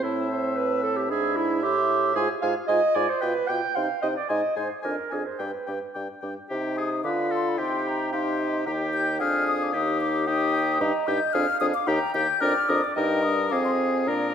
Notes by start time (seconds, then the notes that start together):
0.02 A2 C4 E4 E5 A5
0.30 C5
0.56 B4
0.83 A4
0.97 G4
1.09 G#2 D4 G#4 E5 B5
1.37 E4
1.62 A2 E4 G4 E5 C6
2.15 G#2 F4 G#4 G#5 C6
2.42 G#2 F4 F5 G#5 C6
2.68 G#2 F4 D#5 G#5 C6
2.95 G#2 F4 D5 G#5 C6
3.09 C5
3.21 B2 F4 B4 G5 D6
3.48 B2 F4 G5 D6
3.75 C3 D#4 F5 G5 C6
4.02 C3 D#4 D#5 G5 C6
4.17 D5
4.29 G#2 D#4 D#5 G#5 C6
4.56 G#2 D#4 C5 G#5 C6
4.82 F2 D4 A#4 G#5 D6
5.10 F2 D4 G#4 G#5 D6
5.26 C5
5.39 G2 D4 B4 G5 D6
5.67 G2 D4 G5 D6
5.94 G2 D4 G5 D6
6.22 G2 D4 G5 D6
6.50 C3 D#4 G4 G5
6.77 G#4 D#6
7.04 D3 F4 B4 F5 D6
7.31 A4 C6
7.48 B5
7.58 C3 D#4 G4 G5 C6
7.88 A#5
8.12 D#4 G4 F5 C6
8.40 D#5
8.66 D#2 D#4 G4 G5 A#5
8.94 G6
9.20 F2 D4 G#4 F5 F6
9.47 D#6
9.63 D6
9.73 D#2 D#4 G4 D#6
10.01 D6
10.27 D#4 G4 G5 D#6
10.54 G5
10.80 G2 D#4 G4 D#5 A#5
11.07 G2 D#4 G4 G6
11.33 F2 D4 G#4 F5 F6
11.60 F2 D4 G#4 D#6
11.74 D6
11.87 D#2 D#4 G4 G5 A#5
12.14 D#2 D#4 G4 G6
12.41 F2 D4 A#4 D5 F6
12.69 F2 D4 A#4 D#6
12.84 D6
12.95 G2 D#4 A#4 D#5 G5
13.22 D4 D#6
13.50 F2 C4 G#4 F5 D6
13.65 C6
13.93 G#5
14.06 A#2 D4 A#4 D5 A#5